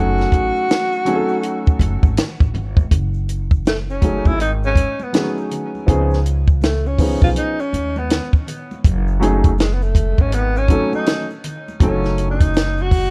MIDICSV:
0, 0, Header, 1, 5, 480
1, 0, Start_track
1, 0, Tempo, 740741
1, 1888, Time_signature, 4, 2, 24, 8
1, 8491, End_track
2, 0, Start_track
2, 0, Title_t, "Tenor saxophone"
2, 0, Program_c, 0, 66
2, 0, Note_on_c, 0, 66, 114
2, 1416, Note_off_c, 0, 66, 0
2, 2380, Note_on_c, 0, 57, 90
2, 2445, Note_off_c, 0, 57, 0
2, 2529, Note_on_c, 0, 61, 89
2, 2768, Note_on_c, 0, 64, 107
2, 2778, Note_off_c, 0, 61, 0
2, 2853, Note_off_c, 0, 64, 0
2, 2859, Note_on_c, 0, 63, 95
2, 2924, Note_off_c, 0, 63, 0
2, 3018, Note_on_c, 0, 61, 99
2, 3256, Note_on_c, 0, 59, 78
2, 3266, Note_off_c, 0, 61, 0
2, 3487, Note_off_c, 0, 59, 0
2, 4297, Note_on_c, 0, 57, 94
2, 4449, Note_on_c, 0, 61, 85
2, 4459, Note_off_c, 0, 57, 0
2, 4684, Note_off_c, 0, 61, 0
2, 4688, Note_on_c, 0, 65, 100
2, 4727, Note_off_c, 0, 65, 0
2, 4777, Note_on_c, 0, 63, 95
2, 4928, Note_on_c, 0, 61, 91
2, 4938, Note_off_c, 0, 63, 0
2, 5171, Note_on_c, 0, 59, 80
2, 5180, Note_off_c, 0, 61, 0
2, 5404, Note_off_c, 0, 59, 0
2, 6222, Note_on_c, 0, 56, 82
2, 6306, Note_on_c, 0, 59, 60
2, 6316, Note_off_c, 0, 56, 0
2, 6368, Note_on_c, 0, 57, 80
2, 6377, Note_off_c, 0, 59, 0
2, 6614, Note_on_c, 0, 61, 91
2, 6623, Note_off_c, 0, 57, 0
2, 6700, Note_on_c, 0, 59, 94
2, 6710, Note_off_c, 0, 61, 0
2, 6852, Note_on_c, 0, 61, 96
2, 6861, Note_off_c, 0, 59, 0
2, 7085, Note_off_c, 0, 61, 0
2, 7093, Note_on_c, 0, 63, 93
2, 7309, Note_off_c, 0, 63, 0
2, 7658, Note_on_c, 0, 61, 86
2, 7951, Note_off_c, 0, 61, 0
2, 7975, Note_on_c, 0, 63, 84
2, 8303, Note_on_c, 0, 66, 107
2, 8312, Note_off_c, 0, 63, 0
2, 8491, Note_off_c, 0, 66, 0
2, 8491, End_track
3, 0, Start_track
3, 0, Title_t, "Upright piano"
3, 0, Program_c, 1, 0
3, 0, Note_on_c, 1, 54, 64
3, 0, Note_on_c, 1, 57, 61
3, 0, Note_on_c, 1, 61, 65
3, 0, Note_on_c, 1, 63, 62
3, 0, Note_on_c, 1, 69, 70
3, 651, Note_off_c, 1, 54, 0
3, 654, Note_off_c, 1, 57, 0
3, 656, Note_off_c, 1, 61, 0
3, 659, Note_off_c, 1, 63, 0
3, 660, Note_off_c, 1, 69, 0
3, 679, Note_on_c, 1, 54, 78
3, 684, Note_on_c, 1, 57, 73
3, 689, Note_on_c, 1, 61, 72
3, 694, Note_on_c, 1, 63, 69
3, 699, Note_on_c, 1, 68, 67
3, 742, Note_on_c, 1, 69, 89
3, 746, Note_off_c, 1, 68, 0
3, 1368, Note_off_c, 1, 54, 0
3, 1370, Note_off_c, 1, 57, 0
3, 1373, Note_off_c, 1, 61, 0
3, 1375, Note_off_c, 1, 63, 0
3, 1399, Note_off_c, 1, 69, 0
3, 2599, Note_on_c, 1, 54, 62
3, 2603, Note_on_c, 1, 57, 59
3, 2607, Note_on_c, 1, 61, 58
3, 2613, Note_on_c, 1, 63, 55
3, 2619, Note_on_c, 1, 68, 64
3, 2790, Note_off_c, 1, 54, 0
3, 2791, Note_off_c, 1, 57, 0
3, 2794, Note_off_c, 1, 61, 0
3, 2797, Note_off_c, 1, 63, 0
3, 2799, Note_off_c, 1, 68, 0
3, 3321, Note_on_c, 1, 54, 59
3, 3324, Note_on_c, 1, 57, 49
3, 3331, Note_on_c, 1, 61, 55
3, 3336, Note_on_c, 1, 63, 57
3, 3340, Note_on_c, 1, 68, 73
3, 3799, Note_on_c, 1, 53, 77
3, 3800, Note_off_c, 1, 61, 0
3, 3804, Note_off_c, 1, 54, 0
3, 3805, Note_off_c, 1, 63, 0
3, 3805, Note_on_c, 1, 59, 71
3, 3806, Note_off_c, 1, 57, 0
3, 3810, Note_off_c, 1, 68, 0
3, 3810, Note_on_c, 1, 61, 70
3, 3814, Note_on_c, 1, 63, 66
3, 3820, Note_on_c, 1, 68, 89
3, 3990, Note_off_c, 1, 53, 0
3, 3993, Note_off_c, 1, 59, 0
3, 3995, Note_off_c, 1, 61, 0
3, 3997, Note_off_c, 1, 63, 0
3, 4000, Note_off_c, 1, 68, 0
3, 4524, Note_on_c, 1, 53, 64
3, 4526, Note_on_c, 1, 59, 62
3, 4533, Note_on_c, 1, 61, 58
3, 4538, Note_on_c, 1, 63, 60
3, 4543, Note_on_c, 1, 68, 65
3, 4886, Note_off_c, 1, 53, 0
3, 4887, Note_off_c, 1, 59, 0
3, 4890, Note_off_c, 1, 61, 0
3, 4893, Note_off_c, 1, 63, 0
3, 4896, Note_off_c, 1, 68, 0
3, 5958, Note_on_c, 1, 54, 85
3, 5965, Note_on_c, 1, 57, 86
3, 5968, Note_on_c, 1, 61, 79
3, 5974, Note_on_c, 1, 63, 88
3, 5979, Note_on_c, 1, 68, 93
3, 6149, Note_off_c, 1, 54, 0
3, 6152, Note_off_c, 1, 57, 0
3, 6154, Note_off_c, 1, 61, 0
3, 6157, Note_off_c, 1, 63, 0
3, 6160, Note_off_c, 1, 68, 0
3, 6918, Note_on_c, 1, 54, 65
3, 6922, Note_on_c, 1, 57, 63
3, 6928, Note_on_c, 1, 61, 60
3, 6933, Note_on_c, 1, 63, 63
3, 6940, Note_on_c, 1, 69, 82
3, 7283, Note_off_c, 1, 54, 0
3, 7285, Note_off_c, 1, 57, 0
3, 7288, Note_off_c, 1, 61, 0
3, 7290, Note_off_c, 1, 63, 0
3, 7294, Note_off_c, 1, 69, 0
3, 7644, Note_on_c, 1, 54, 73
3, 7646, Note_on_c, 1, 57, 62
3, 7652, Note_on_c, 1, 61, 66
3, 7657, Note_on_c, 1, 63, 65
3, 7663, Note_on_c, 1, 69, 82
3, 8330, Note_off_c, 1, 54, 0
3, 8331, Note_off_c, 1, 57, 0
3, 8334, Note_off_c, 1, 61, 0
3, 8336, Note_off_c, 1, 63, 0
3, 8340, Note_off_c, 1, 69, 0
3, 8491, End_track
4, 0, Start_track
4, 0, Title_t, "Upright bass"
4, 0, Program_c, 2, 32
4, 0, Note_on_c, 2, 30, 99
4, 152, Note_off_c, 2, 30, 0
4, 208, Note_on_c, 2, 33, 78
4, 322, Note_off_c, 2, 33, 0
4, 1162, Note_on_c, 2, 30, 91
4, 1279, Note_off_c, 2, 30, 0
4, 1314, Note_on_c, 2, 32, 79
4, 1384, Note_off_c, 2, 32, 0
4, 1557, Note_on_c, 2, 33, 84
4, 1626, Note_off_c, 2, 33, 0
4, 1644, Note_on_c, 2, 31, 90
4, 1829, Note_off_c, 2, 31, 0
4, 1888, Note_on_c, 2, 30, 92
4, 2732, Note_off_c, 2, 30, 0
4, 2756, Note_on_c, 2, 32, 84
4, 3122, Note_off_c, 2, 32, 0
4, 3809, Note_on_c, 2, 37, 101
4, 4653, Note_off_c, 2, 37, 0
4, 4675, Note_on_c, 2, 35, 88
4, 4745, Note_off_c, 2, 35, 0
4, 5007, Note_on_c, 2, 39, 83
4, 5304, Note_off_c, 2, 39, 0
4, 5730, Note_on_c, 2, 30, 116
4, 6573, Note_off_c, 2, 30, 0
4, 6599, Note_on_c, 2, 32, 96
4, 6964, Note_off_c, 2, 32, 0
4, 7650, Note_on_c, 2, 30, 106
4, 8491, Note_off_c, 2, 30, 0
4, 8491, End_track
5, 0, Start_track
5, 0, Title_t, "Drums"
5, 114, Note_on_c, 9, 82, 37
5, 130, Note_on_c, 9, 38, 35
5, 179, Note_off_c, 9, 82, 0
5, 195, Note_off_c, 9, 38, 0
5, 208, Note_on_c, 9, 36, 86
5, 209, Note_on_c, 9, 82, 44
5, 215, Note_on_c, 9, 42, 71
5, 273, Note_off_c, 9, 36, 0
5, 274, Note_off_c, 9, 82, 0
5, 280, Note_off_c, 9, 42, 0
5, 360, Note_on_c, 9, 82, 42
5, 425, Note_off_c, 9, 82, 0
5, 445, Note_on_c, 9, 63, 42
5, 445, Note_on_c, 9, 82, 58
5, 458, Note_on_c, 9, 42, 91
5, 460, Note_on_c, 9, 38, 112
5, 509, Note_off_c, 9, 63, 0
5, 509, Note_off_c, 9, 82, 0
5, 523, Note_off_c, 9, 42, 0
5, 525, Note_off_c, 9, 38, 0
5, 598, Note_on_c, 9, 82, 52
5, 663, Note_off_c, 9, 82, 0
5, 686, Note_on_c, 9, 42, 79
5, 692, Note_on_c, 9, 63, 50
5, 692, Note_on_c, 9, 64, 57
5, 692, Note_on_c, 9, 82, 43
5, 751, Note_off_c, 9, 42, 0
5, 756, Note_off_c, 9, 63, 0
5, 756, Note_off_c, 9, 64, 0
5, 756, Note_off_c, 9, 82, 0
5, 829, Note_on_c, 9, 82, 48
5, 894, Note_off_c, 9, 82, 0
5, 925, Note_on_c, 9, 82, 61
5, 927, Note_on_c, 9, 42, 80
5, 989, Note_off_c, 9, 82, 0
5, 992, Note_off_c, 9, 42, 0
5, 1078, Note_on_c, 9, 82, 53
5, 1084, Note_on_c, 9, 36, 96
5, 1143, Note_off_c, 9, 82, 0
5, 1148, Note_off_c, 9, 36, 0
5, 1162, Note_on_c, 9, 36, 74
5, 1170, Note_on_c, 9, 42, 77
5, 1170, Note_on_c, 9, 63, 52
5, 1170, Note_on_c, 9, 82, 48
5, 1227, Note_off_c, 9, 36, 0
5, 1235, Note_off_c, 9, 42, 0
5, 1235, Note_off_c, 9, 63, 0
5, 1235, Note_off_c, 9, 82, 0
5, 1314, Note_on_c, 9, 36, 95
5, 1319, Note_on_c, 9, 63, 65
5, 1319, Note_on_c, 9, 82, 51
5, 1379, Note_off_c, 9, 36, 0
5, 1384, Note_off_c, 9, 63, 0
5, 1384, Note_off_c, 9, 82, 0
5, 1406, Note_on_c, 9, 42, 100
5, 1412, Note_on_c, 9, 64, 68
5, 1412, Note_on_c, 9, 82, 71
5, 1414, Note_on_c, 9, 38, 105
5, 1471, Note_off_c, 9, 42, 0
5, 1476, Note_off_c, 9, 64, 0
5, 1476, Note_off_c, 9, 82, 0
5, 1479, Note_off_c, 9, 38, 0
5, 1557, Note_on_c, 9, 36, 100
5, 1562, Note_on_c, 9, 82, 46
5, 1622, Note_off_c, 9, 36, 0
5, 1627, Note_off_c, 9, 82, 0
5, 1649, Note_on_c, 9, 42, 74
5, 1655, Note_on_c, 9, 64, 64
5, 1655, Note_on_c, 9, 82, 46
5, 1713, Note_off_c, 9, 42, 0
5, 1720, Note_off_c, 9, 64, 0
5, 1720, Note_off_c, 9, 82, 0
5, 1794, Note_on_c, 9, 36, 112
5, 1806, Note_on_c, 9, 63, 57
5, 1806, Note_on_c, 9, 82, 41
5, 1858, Note_off_c, 9, 36, 0
5, 1871, Note_off_c, 9, 63, 0
5, 1871, Note_off_c, 9, 82, 0
5, 1888, Note_on_c, 9, 36, 97
5, 1889, Note_on_c, 9, 42, 83
5, 1890, Note_on_c, 9, 82, 54
5, 1953, Note_off_c, 9, 36, 0
5, 1954, Note_off_c, 9, 42, 0
5, 1955, Note_off_c, 9, 82, 0
5, 2035, Note_on_c, 9, 82, 40
5, 2099, Note_off_c, 9, 82, 0
5, 2131, Note_on_c, 9, 82, 43
5, 2132, Note_on_c, 9, 42, 65
5, 2196, Note_off_c, 9, 82, 0
5, 2197, Note_off_c, 9, 42, 0
5, 2276, Note_on_c, 9, 36, 90
5, 2284, Note_on_c, 9, 82, 43
5, 2341, Note_off_c, 9, 36, 0
5, 2349, Note_off_c, 9, 82, 0
5, 2369, Note_on_c, 9, 63, 38
5, 2369, Note_on_c, 9, 82, 56
5, 2378, Note_on_c, 9, 42, 79
5, 2380, Note_on_c, 9, 38, 118
5, 2434, Note_off_c, 9, 63, 0
5, 2434, Note_off_c, 9, 82, 0
5, 2442, Note_off_c, 9, 42, 0
5, 2445, Note_off_c, 9, 38, 0
5, 2526, Note_on_c, 9, 82, 47
5, 2590, Note_off_c, 9, 82, 0
5, 2605, Note_on_c, 9, 36, 81
5, 2605, Note_on_c, 9, 42, 83
5, 2615, Note_on_c, 9, 63, 57
5, 2615, Note_on_c, 9, 64, 48
5, 2615, Note_on_c, 9, 82, 37
5, 2670, Note_off_c, 9, 36, 0
5, 2670, Note_off_c, 9, 42, 0
5, 2679, Note_off_c, 9, 63, 0
5, 2679, Note_off_c, 9, 64, 0
5, 2679, Note_off_c, 9, 82, 0
5, 2755, Note_on_c, 9, 82, 43
5, 2757, Note_on_c, 9, 36, 79
5, 2820, Note_off_c, 9, 82, 0
5, 2822, Note_off_c, 9, 36, 0
5, 2851, Note_on_c, 9, 42, 76
5, 2856, Note_on_c, 9, 82, 58
5, 2916, Note_off_c, 9, 42, 0
5, 2921, Note_off_c, 9, 82, 0
5, 3003, Note_on_c, 9, 82, 57
5, 3068, Note_off_c, 9, 82, 0
5, 3082, Note_on_c, 9, 36, 84
5, 3091, Note_on_c, 9, 42, 65
5, 3092, Note_on_c, 9, 63, 51
5, 3092, Note_on_c, 9, 82, 45
5, 3147, Note_off_c, 9, 36, 0
5, 3156, Note_off_c, 9, 42, 0
5, 3157, Note_off_c, 9, 63, 0
5, 3157, Note_off_c, 9, 82, 0
5, 3236, Note_on_c, 9, 63, 64
5, 3236, Note_on_c, 9, 82, 45
5, 3301, Note_off_c, 9, 63, 0
5, 3301, Note_off_c, 9, 82, 0
5, 3328, Note_on_c, 9, 42, 98
5, 3331, Note_on_c, 9, 64, 67
5, 3331, Note_on_c, 9, 82, 66
5, 3336, Note_on_c, 9, 38, 123
5, 3393, Note_off_c, 9, 42, 0
5, 3396, Note_off_c, 9, 64, 0
5, 3396, Note_off_c, 9, 82, 0
5, 3401, Note_off_c, 9, 38, 0
5, 3483, Note_on_c, 9, 82, 44
5, 3547, Note_off_c, 9, 82, 0
5, 3572, Note_on_c, 9, 42, 76
5, 3572, Note_on_c, 9, 64, 58
5, 3572, Note_on_c, 9, 82, 43
5, 3636, Note_off_c, 9, 42, 0
5, 3636, Note_off_c, 9, 64, 0
5, 3636, Note_off_c, 9, 82, 0
5, 3724, Note_on_c, 9, 63, 58
5, 3724, Note_on_c, 9, 82, 41
5, 3789, Note_off_c, 9, 63, 0
5, 3789, Note_off_c, 9, 82, 0
5, 3810, Note_on_c, 9, 36, 107
5, 3813, Note_on_c, 9, 82, 53
5, 3814, Note_on_c, 9, 42, 86
5, 3875, Note_off_c, 9, 36, 0
5, 3877, Note_off_c, 9, 82, 0
5, 3879, Note_off_c, 9, 42, 0
5, 3955, Note_on_c, 9, 82, 37
5, 3972, Note_on_c, 9, 38, 33
5, 4020, Note_off_c, 9, 82, 0
5, 4037, Note_off_c, 9, 38, 0
5, 4053, Note_on_c, 9, 82, 42
5, 4055, Note_on_c, 9, 42, 66
5, 4118, Note_off_c, 9, 82, 0
5, 4120, Note_off_c, 9, 42, 0
5, 4197, Note_on_c, 9, 36, 92
5, 4200, Note_on_c, 9, 82, 45
5, 4261, Note_off_c, 9, 36, 0
5, 4265, Note_off_c, 9, 82, 0
5, 4287, Note_on_c, 9, 63, 39
5, 4287, Note_on_c, 9, 82, 61
5, 4298, Note_on_c, 9, 42, 94
5, 4301, Note_on_c, 9, 38, 118
5, 4352, Note_off_c, 9, 63, 0
5, 4352, Note_off_c, 9, 82, 0
5, 4363, Note_off_c, 9, 42, 0
5, 4366, Note_off_c, 9, 38, 0
5, 4443, Note_on_c, 9, 82, 47
5, 4508, Note_off_c, 9, 82, 0
5, 4525, Note_on_c, 9, 36, 83
5, 4525, Note_on_c, 9, 46, 65
5, 4530, Note_on_c, 9, 63, 54
5, 4530, Note_on_c, 9, 64, 56
5, 4530, Note_on_c, 9, 82, 37
5, 4590, Note_off_c, 9, 36, 0
5, 4590, Note_off_c, 9, 46, 0
5, 4594, Note_off_c, 9, 63, 0
5, 4594, Note_off_c, 9, 64, 0
5, 4594, Note_off_c, 9, 82, 0
5, 4675, Note_on_c, 9, 82, 42
5, 4676, Note_on_c, 9, 36, 100
5, 4739, Note_off_c, 9, 82, 0
5, 4741, Note_off_c, 9, 36, 0
5, 4767, Note_on_c, 9, 42, 78
5, 4770, Note_on_c, 9, 82, 58
5, 4832, Note_off_c, 9, 42, 0
5, 4835, Note_off_c, 9, 82, 0
5, 4919, Note_on_c, 9, 82, 54
5, 4984, Note_off_c, 9, 82, 0
5, 5010, Note_on_c, 9, 63, 45
5, 5010, Note_on_c, 9, 82, 48
5, 5014, Note_on_c, 9, 42, 66
5, 5075, Note_off_c, 9, 63, 0
5, 5075, Note_off_c, 9, 82, 0
5, 5079, Note_off_c, 9, 42, 0
5, 5159, Note_on_c, 9, 63, 64
5, 5159, Note_on_c, 9, 82, 44
5, 5224, Note_off_c, 9, 63, 0
5, 5224, Note_off_c, 9, 82, 0
5, 5251, Note_on_c, 9, 42, 105
5, 5252, Note_on_c, 9, 64, 62
5, 5252, Note_on_c, 9, 82, 63
5, 5259, Note_on_c, 9, 38, 114
5, 5315, Note_off_c, 9, 42, 0
5, 5317, Note_off_c, 9, 64, 0
5, 5317, Note_off_c, 9, 82, 0
5, 5324, Note_off_c, 9, 38, 0
5, 5399, Note_on_c, 9, 36, 101
5, 5401, Note_on_c, 9, 82, 42
5, 5464, Note_off_c, 9, 36, 0
5, 5466, Note_off_c, 9, 82, 0
5, 5493, Note_on_c, 9, 64, 59
5, 5493, Note_on_c, 9, 82, 44
5, 5494, Note_on_c, 9, 42, 74
5, 5557, Note_off_c, 9, 64, 0
5, 5557, Note_off_c, 9, 82, 0
5, 5559, Note_off_c, 9, 42, 0
5, 5645, Note_on_c, 9, 63, 60
5, 5645, Note_on_c, 9, 82, 44
5, 5710, Note_off_c, 9, 63, 0
5, 5710, Note_off_c, 9, 82, 0
5, 5731, Note_on_c, 9, 36, 105
5, 5732, Note_on_c, 9, 82, 62
5, 5733, Note_on_c, 9, 42, 88
5, 5795, Note_off_c, 9, 36, 0
5, 5797, Note_off_c, 9, 82, 0
5, 5798, Note_off_c, 9, 42, 0
5, 5879, Note_on_c, 9, 82, 47
5, 5944, Note_off_c, 9, 82, 0
5, 5973, Note_on_c, 9, 82, 43
5, 5976, Note_on_c, 9, 42, 72
5, 6038, Note_off_c, 9, 82, 0
5, 6040, Note_off_c, 9, 42, 0
5, 6117, Note_on_c, 9, 36, 100
5, 6118, Note_on_c, 9, 42, 49
5, 6121, Note_on_c, 9, 82, 40
5, 6182, Note_off_c, 9, 36, 0
5, 6182, Note_off_c, 9, 42, 0
5, 6186, Note_off_c, 9, 82, 0
5, 6210, Note_on_c, 9, 63, 43
5, 6210, Note_on_c, 9, 82, 60
5, 6220, Note_on_c, 9, 42, 95
5, 6223, Note_on_c, 9, 38, 109
5, 6275, Note_off_c, 9, 63, 0
5, 6275, Note_off_c, 9, 82, 0
5, 6285, Note_off_c, 9, 42, 0
5, 6287, Note_off_c, 9, 38, 0
5, 6362, Note_on_c, 9, 82, 53
5, 6427, Note_off_c, 9, 82, 0
5, 6447, Note_on_c, 9, 36, 84
5, 6451, Note_on_c, 9, 42, 79
5, 6454, Note_on_c, 9, 63, 52
5, 6454, Note_on_c, 9, 64, 55
5, 6454, Note_on_c, 9, 82, 36
5, 6512, Note_off_c, 9, 36, 0
5, 6515, Note_off_c, 9, 42, 0
5, 6518, Note_off_c, 9, 63, 0
5, 6518, Note_off_c, 9, 64, 0
5, 6518, Note_off_c, 9, 82, 0
5, 6594, Note_on_c, 9, 82, 49
5, 6598, Note_on_c, 9, 36, 87
5, 6659, Note_off_c, 9, 82, 0
5, 6663, Note_off_c, 9, 36, 0
5, 6688, Note_on_c, 9, 42, 88
5, 6695, Note_on_c, 9, 82, 60
5, 6752, Note_off_c, 9, 42, 0
5, 6760, Note_off_c, 9, 82, 0
5, 6843, Note_on_c, 9, 82, 59
5, 6908, Note_off_c, 9, 82, 0
5, 6923, Note_on_c, 9, 36, 85
5, 6933, Note_on_c, 9, 42, 64
5, 6936, Note_on_c, 9, 63, 45
5, 6936, Note_on_c, 9, 82, 50
5, 6988, Note_off_c, 9, 36, 0
5, 6998, Note_off_c, 9, 42, 0
5, 7001, Note_off_c, 9, 63, 0
5, 7001, Note_off_c, 9, 82, 0
5, 7082, Note_on_c, 9, 63, 67
5, 7082, Note_on_c, 9, 82, 47
5, 7147, Note_off_c, 9, 63, 0
5, 7147, Note_off_c, 9, 82, 0
5, 7169, Note_on_c, 9, 42, 97
5, 7175, Note_on_c, 9, 64, 62
5, 7175, Note_on_c, 9, 82, 66
5, 7177, Note_on_c, 9, 38, 127
5, 7233, Note_off_c, 9, 42, 0
5, 7240, Note_off_c, 9, 64, 0
5, 7240, Note_off_c, 9, 82, 0
5, 7242, Note_off_c, 9, 38, 0
5, 7323, Note_on_c, 9, 82, 45
5, 7388, Note_off_c, 9, 82, 0
5, 7412, Note_on_c, 9, 42, 79
5, 7414, Note_on_c, 9, 64, 66
5, 7414, Note_on_c, 9, 82, 44
5, 7477, Note_off_c, 9, 42, 0
5, 7479, Note_off_c, 9, 64, 0
5, 7479, Note_off_c, 9, 82, 0
5, 7571, Note_on_c, 9, 63, 58
5, 7571, Note_on_c, 9, 82, 44
5, 7636, Note_off_c, 9, 63, 0
5, 7636, Note_off_c, 9, 82, 0
5, 7649, Note_on_c, 9, 36, 113
5, 7650, Note_on_c, 9, 42, 91
5, 7657, Note_on_c, 9, 82, 57
5, 7714, Note_off_c, 9, 36, 0
5, 7715, Note_off_c, 9, 42, 0
5, 7722, Note_off_c, 9, 82, 0
5, 7798, Note_on_c, 9, 82, 40
5, 7805, Note_on_c, 9, 38, 34
5, 7863, Note_off_c, 9, 82, 0
5, 7870, Note_off_c, 9, 38, 0
5, 7891, Note_on_c, 9, 42, 72
5, 7892, Note_on_c, 9, 82, 46
5, 7956, Note_off_c, 9, 42, 0
5, 7956, Note_off_c, 9, 82, 0
5, 8036, Note_on_c, 9, 42, 57
5, 8037, Note_on_c, 9, 36, 95
5, 8038, Note_on_c, 9, 82, 42
5, 8101, Note_off_c, 9, 42, 0
5, 8102, Note_off_c, 9, 36, 0
5, 8103, Note_off_c, 9, 82, 0
5, 8123, Note_on_c, 9, 63, 40
5, 8123, Note_on_c, 9, 82, 61
5, 8140, Note_on_c, 9, 42, 96
5, 8143, Note_on_c, 9, 38, 113
5, 8188, Note_off_c, 9, 63, 0
5, 8188, Note_off_c, 9, 82, 0
5, 8205, Note_off_c, 9, 42, 0
5, 8207, Note_off_c, 9, 38, 0
5, 8274, Note_on_c, 9, 82, 51
5, 8339, Note_off_c, 9, 82, 0
5, 8364, Note_on_c, 9, 63, 53
5, 8364, Note_on_c, 9, 64, 51
5, 8364, Note_on_c, 9, 82, 38
5, 8366, Note_on_c, 9, 36, 88
5, 8368, Note_on_c, 9, 46, 56
5, 8429, Note_off_c, 9, 63, 0
5, 8429, Note_off_c, 9, 64, 0
5, 8429, Note_off_c, 9, 82, 0
5, 8431, Note_off_c, 9, 36, 0
5, 8432, Note_off_c, 9, 46, 0
5, 8491, End_track
0, 0, End_of_file